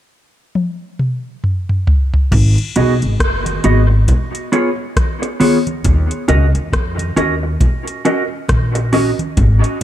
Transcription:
0.55 high tom
0.99 mid tom
1.44 mid tom
1.69 mid tom
1.87 floor tom
2.14 floor tom
2.32 G#1, kick, crash, low conga
2.58 closed hi-hat
2.76 B1 B3 F#4 G#4 D#5, closed hi-hat, low conga
3.02 G#1, closed hi-hat
3.20 F#1, kick, cross-stick, closed hi-hat
3.46 closed hi-hat, high conga
3.64 G#1 B3 F#4 G#4 D#5, closed hi-hat, high conga
3.90 muted clean electric guitar stroke
4.08 kick, closed hi-hat, low conga
4.35 closed hi-hat
4.52 B3 F4 G#4 C#5, closed hi-hat
4.97 kick, cross-stick, closed hi-hat, high conga
5.22 muted clean electric guitar stroke, closed hi-hat
5.40 B3 F4 G#4 C#5, open hi-hat, high conga
5.67 closed hi-hat, high conga
5.84 D#2, kick, closed hi-hat, low conga
6.11 closed hi-hat
6.28 C#2 C#4 F#4 A#4 D#5, closed hi-hat, low conga
6.55 D#2, closed hi-hat
6.73 F2, kick, cross-stick, closed hi-hat
6.98 closed hi-hat, high conga
7.16 D#2 C#4 F#4 A#4 D#5, closed hi-hat, high conga
7.43 muted clean electric guitar stroke
7.61 kick, closed hi-hat, low conga
7.88 closed hi-hat
8.05 C#4 F#4 A#4 D#5, closed hi-hat
8.49 A#1, kick, cross-stick, closed hi-hat, high conga
8.75 muted clean electric guitar stroke, closed hi-hat
8.93 C#4 F#4 A#4 D#5, open hi-hat, high conga
9.19 closed hi-hat, high conga
9.37 G#1, kick, closed hi-hat, low conga
9.64 closed hi-hat

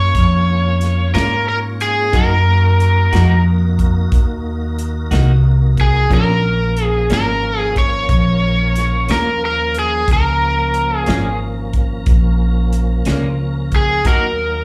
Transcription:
Already playing: F#2 A#3 C#4 F4 C#5
0.15 F2, kick, snare, closed hi-hat
0.81 snare, closed hi-hat
1.14 G#2 A#2 A#3 C#4 F4 A#4, snare, closed hi-hat
1.49 A#4
1.80 G#4, closed hi-hat
2.12 F#2 D#3 A#3 D#4 F#4 A#4, kick, closed hi-hat
2.80 closed hi-hat
3.13 F2 D#3 A#3 D#4 F#4, snare, closed hi-hat
3.79 kick, closed hi-hat
4.12 D#2, kick, closed hi-hat
4.79 closed hi-hat
5.11 C2 D#3 A#3 D#4 F#4, snare, closed hi-hat
5.77 G#4, kick, closed hi-hat
6.10 A#1 A#2 F3 F#3 A#3 B3 C#4 D4 A#4, kick, closed hi-hat
6.14 A#4
6.43 F3 A#3 C#4 A#4
6.77 closed hi-hat
6.85 G#4
7.10 G#1 A#2 F3 A#3 C#4 A#4, snare, closed hi-hat
7.59 G#4
7.76 C#5, kick, closed hi-hat
8.09 A#1, kick, closed hi-hat
8.76 snare, closed hi-hat
9.09 D#2 A#2 F3 A#3 C#4 A#4, snare, closed hi-hat
9.46 A#4
9.74 closed hi-hat
9.79 G#4
10.08 C#2 F3 A#3 C#4 A#4, kick, closed hi-hat
10.13 A#4
10.74 closed hi-hat
10.98 G#4
11.06 G#1 A#2 F3 A#3 C#4, snare, closed hi-hat
11.73 kick, closed hi-hat
12.06 A#1, kick, closed hi-hat
12.73 closed hi-hat
13.05 C#2 A#2 F3 A#3 C#4, snare, closed hi-hat
13.72 kick, closed hi-hat
13.76 G#4
14.05 D#2 D#3 F#3 A#3 D#4 F#4 A#4, kick, closed hi-hat

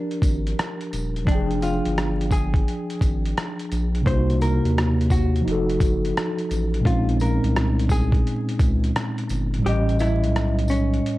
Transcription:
Already playing: F3 D4 G4 A#4
0.11 closed hi-hat
0.22 G#1, kick, closed hi-hat, tambourine
0.47 closed hi-hat
0.59 cross-stick, closed hi-hat
0.81 closed hi-hat
0.93 D#1, closed hi-hat, tambourine
1.16 closed hi-hat
1.25 F1 F3 D4, kick, closed hi-hat
1.32 G#4 G5
1.51 closed hi-hat
1.62 F4, closed hi-hat, tambourine
1.85 G1, closed hi-hat
1.98 cross-stick, closed hi-hat
2.21 closed hi-hat
2.31 G#4, kick, closed hi-hat, tambourine
2.54 kick, closed hi-hat
2.68 closed hi-hat
2.90 closed hi-hat
3.01 G#1, kick, closed hi-hat, tambourine
3.25 closed hi-hat
3.37 cross-stick, closed hi-hat
3.59 closed hi-hat
3.72 A#1, closed hi-hat, tambourine
3.95 closed hi-hat
4.02 C3 A#3
4.06 C2 D4 C5, kick, closed hi-hat
4.12 D#4 F#4
4.30 closed hi-hat
4.41 A#4, closed hi-hat, tambourine
4.65 D#2, closed hi-hat
4.78 cross-stick, closed hi-hat
5.01 closed hi-hat
5.10 F#4, kick, closed hi-hat, tambourine
5.36 closed hi-hat
5.42 F3 D#4
5.46 F1 F#4, closed hi-hat
5.52 A4
5.70 closed hi-hat
5.80 F#1, kick, closed hi-hat, tambourine
6.05 closed hi-hat
6.17 cross-stick, closed hi-hat
6.38 closed hi-hat
6.51 A1, closed hi-hat, tambourine
6.74 closed hi-hat
6.80 A#2 G#3
6.85 A#1 C4 C#4 F4, kick, closed hi-hat
6.90 D#4
7.09 closed hi-hat
7.20 A#4, closed hi-hat, tambourine
7.44 C2, closed hi-hat
7.56 cross-stick, closed hi-hat
7.79 closed hi-hat
7.89 G#4, kick, closed hi-hat, tambourine
8.12 kick, closed hi-hat
8.27 closed hi-hat
8.49 closed hi-hat
8.59 C#2, kick, closed hi-hat, tambourine
8.84 closed hi-hat
8.96 cross-stick, closed hi-hat
9.18 closed hi-hat
9.29 G1, closed hi-hat, tambourine
9.54 closed hi-hat
9.58 A2 G3
9.65 A1 C#4 G4 D#5, closed hi-hat
9.89 closed hi-hat
9.99 E4, cross-stick, closed hi-hat, tambourine
10.23 B1, closed hi-hat
10.36 cross-stick, closed hi-hat
10.59 closed hi-hat
10.68 C#4, closed hi-hat, tambourine
10.94 closed hi-hat
11.06 closed hi-hat

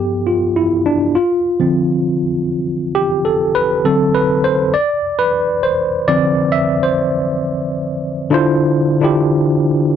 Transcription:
Already playing: G2 F3 B3 G4
0.27 F4
0.56 E4
0.86 D4
1.15 F4
1.60 D3 F3 C4
2.95 G4
3.25 A4
3.55 B4
3.84 D3 F#3 C4 A4
4.15 B4
4.44 C5
4.74 D5
5.19 B4
5.63 C5
6.07 D3 F3 C4 D5
6.52 E5
6.83 C5
8.30 D3 D4 E4 F4 C5
9.01 D3 D4 E4 F4 G4

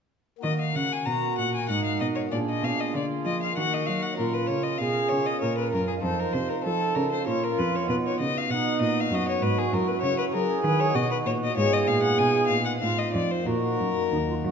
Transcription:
0.38 A#3 F#4 A#4
0.43 D#3 D#5
0.61 F5
0.74 C#3 F#5
0.92 G#5
1.06 B2 F#4 A#5
1.38 A#2 F#5
1.55 G#5
1.68 G#2 D#4 F#5
1.85 F5
2.00 B2 D#5
2.15 C#5
2.28 A#3 D4 F4 G#4 D5
2.32 A#2
2.50 D#5
2.63 B2 F5
2.80 D#5
2.94 D3 F4 D5
3.25 F3 D#5
3.43 F5
3.53 D#3 A#3 D#4 A#4
3.58 F#4 F#5
3.74 D#5
3.86 F#3 F5
4.02 F#5
4.13 C#4 F4 A#4
4.18 A#2 F4 A#4
4.34 B4
4.47 C#3 C#5
4.63 D#5
4.78 B2 G#4 F5
5.09 C#3 C#5
5.26 D#5
5.41 A#2 A#4 C#5
5.58 B4
5.72 F#2 A#4
5.88 G#4
5.97 F2 D#4 F4 C5
6.02 F2 A4 C5
6.20 A#4
6.33 C3 C5
6.49 A#4
6.64 F3 A4
6.95 C#3 A#4
7.12 C5
7.20 C#4 F4 A#4
7.25 A#2 F4 C#5
7.44 A#4
7.56 F2 B4
7.76 C#5
7.83 B3 D#4 F#4
7.87 B2 B4
8.07 C#5
8.18 C#3 D#5
8.38 F5
8.48 B2 D#4 F#5
8.79 A#2 D#5
9.01 F5
9.10 F#2 F#4
9.15 D#5
9.29 C#5
9.40 G#2 B4
9.58 G#4
9.68 C#4 E4 F#4
9.72 F#2 A#4
9.88 B4
10.02 C#3 C#5
10.18 B4
10.33 F#3 G#4 A#4
10.63 D#3 B4
10.80 C#5
10.89 B3 D#4 F#4
10.93 B2 F#4 D#5
11.11 B4
11.25 A#2 C#5
11.44 D#5
11.51 B3 D#4 F4
11.56 G#2 G#4 C#5
11.73 D#5
11.87 A#2 F5
12.03 F#5
12.18 B2 G#5
12.48 A#2 F5
12.65 F#5
12.77 C4 D#4 F4 F5
12.82 A2
12.99 D#5
13.13 F2 D5
13.31 C5
13.40 A#3 D#4 F#4
13.45 A#2 F#4 A#4
13.79 F#2
14.11 D#2 D#4
14.28 F4
14.43 F#2 F#4

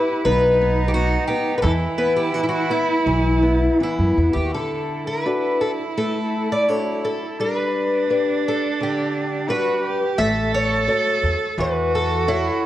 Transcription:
Already playing: E4 G4 B4
0.25 B1 B3 D#4 B4
0.61 B3
0.88 G4
0.94 B3 F#4
1.27 B3 G4
1.58 B4
1.62 E2 E3 E4 A4
1.98 B3 B4
2.16 G4
2.34 E3 F#4
2.44 E4
2.49 F#4
2.70 B3 E4
3.06 B1 E3
3.42 B3
3.80 E3 B3 E4
3.98 F#2
4.17 E2 B3
4.33 D#2 G4
4.45 F#4
4.52 D3 E4 A4
5.07 B4
5.26 D4 F#4 A4
5.61 A4
5.98 A3 A4
6.52 D5
6.69 D4 F#4 A4 C#5
7.05 A4
7.40 G3 D4 B4
8.10 D4 G4 B4
8.48 A4
8.81 D3 G4
9.49 G3 D4 F#4 B4
9.84 G4
10.18 A1 A3 A4 E5
10.54 C#5
10.87 F#4 A4 C#5
11.23 E2
11.57 E2 E3 F#4 B4
11.95 A4
12.27 E4 F#4 A4 C#5

